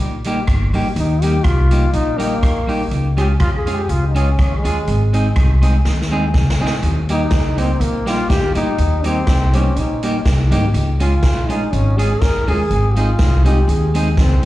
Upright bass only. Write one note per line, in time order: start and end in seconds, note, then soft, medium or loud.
0.00 0.40 A#1 loud
0.48 0.70 G1 loud
0.74 0.93 A#1 medium
0.96 1.38 D#2 loud
1.45 1.86 C2 medium
1.93 2.35 A#1 medium
2.43 2.84 A#1 medium
2.91 3.33 C#2 loud
3.40 3.82 F2 medium
3.89 4.31 C#2 loud
4.39 4.61 D#2 loud
4.64 4.84 D#2 medium
4.88 5.29 G#1 loud
5.37 5.78 C2 medium
5.85 6.36 D#2 loud
6.34 6.56 C#2 medium
6.59 6.79 A#1 medium
6.82 7.24 D#2 loud
7.32 7.73 C#2 medium
7.80 8.22 A#1 loud
8.30 8.52 G1 loud
8.55 8.75 A#1 medium
8.78 9.20 D#2 loud
9.27 9.69 C2 medium
9.76 10.18 A#1 medium
10.26 10.48 C2 loud
10.51 10.71 G#1 loud
10.74 11.16 C#2 loud
11.23 11.65 A#1 medium
11.73 12.14 G#1 loud
12.22 12.44 G1 medium
12.47 12.67 D#2 medium
12.71 13.12 G#1 loud
13.19 13.61 C2 medium
13.68 14.19 D#2 loud
14.17 14.40 C#2 medium